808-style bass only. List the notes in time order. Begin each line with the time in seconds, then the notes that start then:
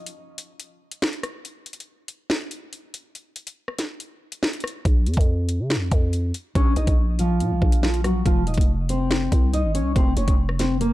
4.85 A#1
5.06 F2
5.17 F2
5.60 C#3
5.76 F2
5.92 F2
6.55 A#1
6.77 A#1
6.87 A#1
7.40 A#2
7.51 A#1
7.62 A#1
8.26 F1
8.47 D#1
8.58 F1
9.32 C2
9.64 G#1
9.80 C2
9.96 F1
10.17 F1
10.28 F1